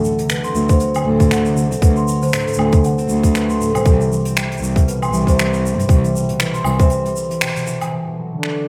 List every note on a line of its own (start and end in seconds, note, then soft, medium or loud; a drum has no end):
0.00 2.87 A3 medium
0.00 0.11 C#4 medium
0.04 0.22 D3 medium
0.04 shaker medium
0.19 0.35 C3 medium
0.19 closed hi-hat medium
0.19 shaker soft
0.29 0.93 D3 medium
0.29 0.44 B4 medium
0.29 finger snap medium
0.29 closed hi-hat medium
0.29 shaker medium
0.44 1.70 C4 medium
0.44 0.51 C6 medium
0.44 closed hi-hat soft
0.44 shaker soft
0.55 0.67 D2 medium
0.55 0.68 F#3 medium
0.55 shaker medium
0.69 0.79 F#3 medium
0.69 0.76 C5 medium
0.69 kick medium
0.69 closed hi-hat medium
0.69 shaker soft
0.80 0.99 F#3 medium
0.80 0.95 C5 medium
0.80 closed hi-hat medium
0.80 shaker soft
0.94 1.11 D3 medium
0.94 closed hi-hat soft
0.94 low woodblock medium
0.94 shaker soft
1.06 1.73 D2 medium
1.06 1.19 A2 medium
1.20 1.37 A2 medium
1.20 kick medium
1.20 closed hi-hat medium
1.20 shaker soft
1.31 1.49 D3 medium
1.31 1.45 F#5 medium
1.31 finger snap medium
1.31 closed hi-hat medium
1.31 shaker medium
1.45 1.62 C3 medium
1.45 shaker soft
1.56 2.21 D3 medium
1.56 shaker medium
1.71 1.81 C2 medium
1.71 2.98 C4 medium
1.71 closed hi-hat soft
1.71 shaker medium
1.82 1.94 D2 medium
1.82 1.95 F#3 medium
1.82 1.96 B4 medium
1.82 kick loud
1.82 closed hi-hat medium
1.82 shaker soft
1.96 2.06 F#3 medium
1.96 2.03 C6 medium
1.96 shaker soft
2.08 2.26 F#3 medium
2.08 shaker medium
2.22 2.38 D3 medium
2.22 2.29 C5 medium
2.22 closed hi-hat medium
2.22 shaker soft
2.28 shaker soft
2.33 2.46 A2 medium
2.33 finger snap medium
2.33 closed hi-hat medium
2.33 shaker medium
2.33 shaker soft
2.47 2.64 A2 medium
2.47 closed hi-hat soft
2.47 shaker soft
2.53 shaker medium
2.58 2.70 D2 medium
2.58 2.77 D3 loud
2.58 low woodblock medium
2.72 2.89 C3 medium
2.72 kick medium
2.72 closed hi-hat soft
2.72 shaker soft
2.84 3.48 D3 medium
2.84 2.98 F#5 medium
2.84 closed hi-hat medium
2.84 shaker medium
2.98 4.26 C4 medium
2.98 closed hi-hat soft
2.98 shaker soft
3.09 3.76 D2 loud
3.09 3.22 F#3 medium
3.09 shaker medium
3.23 3.33 F#3 medium
3.23 kick medium
3.23 closed hi-hat medium
3.23 shaker medium
3.34 3.53 F#3 medium
3.34 3.49 B4 medium
3.34 finger snap medium
3.34 closed hi-hat medium
3.34 shaker medium
3.49 3.65 D3 medium
3.49 3.56 C6 medium
3.49 shaker soft
3.60 3.73 A2 medium
3.60 shaker medium
3.74 3.84 C2 medium
3.74 3.91 A2 medium
3.74 3.81 C5 loud
3.74 closed hi-hat medium
3.74 low woodblock medium
3.74 shaker medium
3.85 3.98 C2 medium
3.85 4.04 E3 medium
3.85 3.99 C5 medium
3.85 kick loud
3.85 closed hi-hat medium
3.85 shaker soft
4.00 4.93 C3 medium
4.00 shaker soft
4.11 4.75 E3 medium
4.11 shaker medium
4.25 4.94 C4 loud
4.25 closed hi-hat medium
4.25 shaker soft
4.36 4.49 G3 medium
4.36 4.50 G5 medium
4.36 finger snap medium
4.36 closed hi-hat medium
4.36 shaker medium
4.51 4.61 G3 medium
4.51 closed hi-hat soft
4.57 shaker soft
4.62 4.74 C2 medium
4.62 5.63 G3 medium
4.62 shaker medium
4.76 4.93 E3 medium
4.76 kick medium
4.76 closed hi-hat medium
4.76 shaker soft
4.88 5.01 B2 medium
4.88 5.01 B4 medium
4.88 closed hi-hat medium
4.88 shaker soft
5.02 5.31 B2 medium
5.02 5.08 C6 medium
5.02 closed hi-hat soft
5.02 low woodblock medium
5.02 shaker soft
5.13 5.79 C2 loud
5.13 5.31 E3 medium
5.13 shaker medium
5.27 6.20 C3 medium
5.27 5.34 C5 loud
5.27 kick medium
5.27 closed hi-hat medium
5.27 shaker soft
5.38 6.02 E3 medium
5.38 finger snap medium
5.38 closed hi-hat medium
5.38 shaker medium
5.53 6.21 C4 loud
5.53 shaker soft
5.64 5.77 G3 medium
5.64 shaker medium
5.78 5.87 G2 medium
5.78 5.88 G3 medium
5.78 closed hi-hat medium
5.78 shaker soft
5.89 6.01 C2 loud
5.89 6.89 G3 medium
5.89 6.03 G5 medium
5.89 kick loud
5.89 closed hi-hat medium
5.89 shaker soft
6.04 6.20 E3 medium
6.04 closed hi-hat soft
6.04 shaker soft
6.14 6.28 B2 medium
6.14 shaker medium
6.29 6.58 B2 medium
6.29 closed hi-hat medium
6.40 6.58 E3 medium
6.40 6.54 B4 medium
6.40 finger snap loud
6.40 closed hi-hat medium
6.40 shaker medium
6.40 shaker soft
6.54 7.47 C3 medium
6.54 6.61 C6 loud
6.54 closed hi-hat soft
6.54 shaker soft
6.64 6.77 C2 medium
6.64 7.29 E3 medium
6.64 low woodblock medium
6.64 shaker medium
6.79 7.48 C4 loud
6.79 6.86 C5 loud
6.79 kick loud
6.79 closed hi-hat medium
6.79 shaker soft
6.90 7.04 G3 medium
6.90 7.04 C5 medium
6.90 closed hi-hat medium
6.90 shaker medium
7.05 7.15 G3 medium
7.05 closed hi-hat soft
7.05 shaker soft
7.16 7.98 G3 medium
7.16 shaker medium
7.30 7.47 E3 medium
7.30 closed hi-hat medium
7.30 shaker soft
7.41 7.54 B2 medium
7.41 7.55 G5 medium
7.41 finger snap loud
7.41 closed hi-hat medium
7.41 shaker medium
7.55 7.85 B2 medium
7.55 closed hi-hat soft
7.55 shaker soft
7.67 7.85 E3 medium
7.67 shaker medium
7.81 7.98 C3 medium
7.81 closed hi-hat medium
7.81 low woodblock medium
7.81 shaker soft
7.93 8.06 B2 medium
8.07 8.36 B2 medium
8.18 8.36 F#3 medium
8.32 8.68 D3 medium
8.39 8.68 D4 medium
8.43 8.68 F#3 medium
8.43 finger snap medium
8.57 8.68 D4 medium